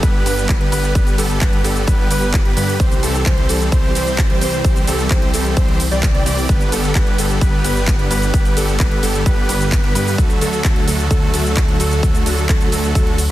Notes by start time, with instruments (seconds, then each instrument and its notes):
0.03 detuned saw bass G1, supersaw synth D3 G3 B3 G4 B4, grand piano B4, kick, closed hi-hat, cabasa
0.26 detuned saw bass G1, supersaw synth D3 G3 B3 G4 B4, grand piano B4, open hi-hat, ride, cabasa
0.38 closed hi-hat, cabasa
0.49 kick, clap, closed hi-hat, cabasa
0.61 detuned saw bass G1, supersaw synth D3 G3 B3 G4 B4, grand piano B4, closed hi-hat
0.72 detuned saw bass G1, supersaw synth D3 G3 B3 G4 B4, grand piano B4, open hi-hat, ride, cabasa
0.84 closed hi-hat, cabasa
0.95 detuned saw bass G1, supersaw synth D3 G3 B3 G4 B4, grand piano B4, kick, closed hi-hat, cabasa
1.07 closed hi-hat, cabasa
1.18 detuned saw bass G1, supersaw synth D3 G3 B3 G4 A4, grand piano A4, open hi-hat, ride, cabasa
1.30 closed hi-hat, cabasa
1.41 detuned saw bass G1, supersaw synth D3 G3 B3 G4 B4, grand piano B4, kick, clap, closed hi-hat, cabasa
1.53 closed hi-hat
1.64 detuned saw bass G1, supersaw synth D3 G3 B3 G4 A4, grand piano A4, open hi-hat, ride, cabasa
1.76 closed hi-hat, cabasa
1.88 detuned saw bass G1, supersaw synth D3 G3 B3 G4 B4, grand piano B4, kick, closed hi-hat, cabasa
2.11 detuned saw bass G1, supersaw synth D3 G3 B3 G4 B4, grand piano B4, open hi-hat, ride, cabasa
2.22 closed hi-hat, cabasa
2.34 kick, clap, closed hi-hat, cabasa
2.45 detuned saw bass G1, supersaw synth D3 G3 B3 G4 B4, grand piano B4, closed hi-hat
2.57 detuned saw bass G2, supersaw synth D3 G3 B3 G4 B4, grand piano B4, open hi-hat, ride, cabasa
2.68 open hi-hat, cabasa
2.80 detuned saw bass C2, supersaw synth E3 G3 C4 G4 C5, kick, closed hi-hat, cabasa
2.91 closed hi-hat, cabasa
3.03 detuned saw bass C2, supersaw synth E3 G3 C4 G4 A4, grand piano A4, open hi-hat, ride, cabasa
3.15 closed hi-hat, cabasa
3.26 detuned saw bass C2, supersaw synth E3 G3 C4 G4 C5, kick, clap, closed hi-hat, cabasa
3.38 closed hi-hat
3.49 detuned saw bass C2, supersaw synth E3 G3 C4 G4 A4, grand piano A4, open hi-hat, ride, cabasa
3.61 closed hi-hat, cabasa
3.72 detuned saw bass C2, supersaw synth E3 G3 C4 G4 C5, grand piano C5, kick, closed hi-hat, cabasa
3.95 detuned saw bass C2, supersaw synth E3 G3 C4 G4 C5, grand piano C5, open hi-hat, ride, cabasa
4.07 closed hi-hat, cabasa
4.18 kick, clap, closed hi-hat, cabasa
4.30 detuned saw bass C2, supersaw synth E3 G3 C4 G4 C5, grand piano C5, closed hi-hat
4.41 detuned saw bass C2, supersaw synth E3 G3 C4 G4 C5, grand piano C5, open hi-hat, ride, cabasa
4.53 closed hi-hat, cabasa
4.64 detuned saw bass C2, supersaw synth E3 G3 C4 G4 C5, kick, closed hi-hat, cabasa
4.76 closed hi-hat, cabasa
4.87 detuned saw bass C2, supersaw synth E3 G3 C4 G4 A4, grand piano A4, open hi-hat, ride, cabasa
4.99 closed hi-hat, cabasa
5.11 detuned saw bass C2, supersaw synth E3 G3 C4 G4 C5, grand piano C5, kick, clap, closed hi-hat, cabasa
5.22 closed hi-hat
5.34 detuned saw bass C2, supersaw synth E3 G3 C4 G4 A4, grand piano A4, open hi-hat, ride, cabasa
5.45 closed hi-hat, cabasa
5.57 detuned saw bass C2, supersaw synth E3 G3 C4 G4 C5, grand piano C5, kick, closed hi-hat, cabasa
5.68 closed hi-hat
5.80 open hi-hat, ride, cabasa
5.91 detuned saw bass C2, supersaw synth E3 G3 C4 G4 D5, grand piano D5, closed hi-hat, cabasa
6.03 kick, clap, closed hi-hat, cabasa
6.14 detuned saw bass C2, supersaw synth E3 G3 C4 G4 D5, grand piano D5, closed hi-hat
6.26 detuned saw bass C2, supersaw synth E3 G3 C4 G4 D5, grand piano D5, open hi-hat, ride, cabasa
6.38 open hi-hat, cabasa
6.49 detuned saw bass G1, supersaw synth D3 G3 B3 G4 B4, grand piano B4, kick, closed hi-hat, cabasa
6.61 closed hi-hat, cabasa
6.72 detuned saw bass G1, supersaw synth D3 G3 B3 G4 A4, grand piano A4, open hi-hat, ride, cabasa
6.84 closed hi-hat, cabasa
6.95 detuned saw bass G1, supersaw synth D3 G3 B3 G4 B4, grand piano B4, kick, clap, closed hi-hat, cabasa
7.07 closed hi-hat
7.18 detuned saw bass G1, supersaw synth D3 G3 B3 G4 A4, grand piano A4, open hi-hat, ride, cabasa
7.30 closed hi-hat, cabasa
7.41 detuned saw bass G1, supersaw synth D3 G3 B3 G4 B4, grand piano B4, kick, closed hi-hat, cabasa
7.64 detuned saw bass G1, supersaw synth D3 G3 B3 G4 B4, grand piano B4, open hi-hat, ride, cabasa
7.76 closed hi-hat, cabasa
7.88 kick, clap, closed hi-hat, cabasa
7.99 detuned saw bass G1, supersaw synth D3 G3 B3 G4 B4, grand piano B4, closed hi-hat
8.11 detuned saw bass G1, supersaw synth D3 G3 B3 G4 B4, grand piano B4, open hi-hat, ride, cabasa
8.22 closed hi-hat, cabasa
8.34 detuned saw bass G1, supersaw synth D3 G3 B3 G4 B4, grand piano B4, kick, closed hi-hat, cabasa
8.45 closed hi-hat, cabasa
8.57 detuned saw bass G1, supersaw synth D3 G3 B3 G4 A4, grand piano A4, open hi-hat, ride, cabasa
8.68 closed hi-hat, cabasa
8.80 detuned saw bass G1, supersaw synth D3 G3 B3 G4 B4, grand piano B4, kick, clap, closed hi-hat, cabasa
8.91 closed hi-hat
9.03 detuned saw bass G1, supersaw synth D3 G3 B3 G4 A4, grand piano A4, open hi-hat, ride, cabasa
9.14 closed hi-hat, cabasa
9.26 detuned saw bass G1, supersaw synth D3 G3 B3 G4 B4, grand piano B4, kick, closed hi-hat, cabasa
9.49 detuned saw bass G1, supersaw synth D3 G3 B3 G4 B4, grand piano B4, open hi-hat, ride, cabasa
9.61 closed hi-hat, cabasa
9.72 kick, clap, closed hi-hat, cabasa
9.84 detuned saw bass G1, supersaw synth D3 G3 B3 G4 B4, grand piano B4, closed hi-hat
9.95 detuned saw bass G2, supersaw synth D3 G3 B3 G4 B4, grand piano B4, open hi-hat, ride, cabasa
10.07 open hi-hat, cabasa
10.18 detuned saw bass D2, supersaw synth D3 F#3 A3 F#4 A4, grand piano A4, kick, closed hi-hat, cabasa
10.30 closed hi-hat, cabasa
10.41 detuned saw bass D2, supersaw synth D3 F#3 A3 F#4 A4, grand piano A4, open hi-hat, ride, cabasa
10.53 closed hi-hat, cabasa
10.64 detuned saw bass D2, supersaw synth D3 F#3 A3 F#4 A4, kick, clap, closed hi-hat, cabasa
10.76 closed hi-hat
10.88 detuned saw bass D2, supersaw synth D3 F#3 A3 F#4 A4, grand piano A4, open hi-hat, ride, cabasa
10.99 closed hi-hat, cabasa
11.11 detuned saw bass D2, supersaw synth D3 F#3 A3 F#4 A4, grand piano A4, kick, closed hi-hat, cabasa
11.34 detuned saw bass D2, supersaw synth D3 F#3 A3 F#4 A4, grand piano A4, open hi-hat, ride, cabasa
11.45 closed hi-hat, cabasa
11.57 kick, clap, closed hi-hat, cabasa
11.68 detuned saw bass D2, supersaw synth D3 F#3 A3 F#4 A4, grand piano A4, closed hi-hat
11.80 detuned saw bass D2, supersaw synth D3 F#3 A3 F#4 A4, grand piano A4, open hi-hat, ride, cabasa
11.91 closed hi-hat, cabasa
12.03 detuned saw bass D2, supersaw synth D3 F#3 A3 F#4 A4, kick, closed hi-hat, cabasa
12.15 closed hi-hat, cabasa
12.26 detuned saw bass D2, supersaw synth D3 F#3 A3 F#4 A4, grand piano A4, open hi-hat, ride, cabasa
12.38 closed hi-hat, cabasa
12.49 detuned saw bass D2, supersaw synth D3 F#3 A3 F#4 A4, grand piano A4, kick, clap, closed hi-hat, cabasa
12.61 closed hi-hat, cabasa
12.72 detuned saw bass D2, supersaw synth D3 F#3 A3 F#4 A4, grand piano A4, open hi-hat, ride, cabasa
12.84 closed hi-hat, cabasa
12.95 detuned saw bass D2, supersaw synth D3 F#3 A3 F#4 A4, grand piano A4, kick, closed hi-hat, cabasa
13.07 closed hi-hat
13.18 open hi-hat, ride, cabasa